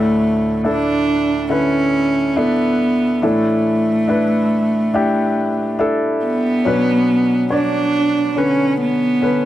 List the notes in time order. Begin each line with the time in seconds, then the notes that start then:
Already playing: D2 A2 A3 D4 E4 A4
0.64 D4 E4 A4
1.50 D3 C#4 E4 B4
2.36 B3 D4 E4 A4
3.22 A2 E3 A3 D4 E4 A4
4.08 D4 E4 B4
4.94 D4 E4 G4
5.79 D4 E4 A4
6.25 B3
6.65 B2 F#3 C#4 D4 B4
7.50 D4 C#5 D5
8.36 D3 C#4 B4
8.81 B3
9.22 D3 C#4 B4